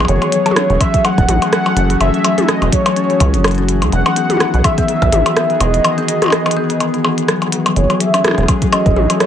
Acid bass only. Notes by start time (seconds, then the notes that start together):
0.08 F#1
0.70 E1
1.18 E1
1.28 A1
1.76 F#1
2.00 F#1
2.62 E1
3.21 C#2
3.34 F#1
3.82 C#2
3.92 E1
4.54 B1
5.02 B1
5.12 G#1
5.60 E1
7.76 F#1
8.38 E1
8.86 E1
8.96 A1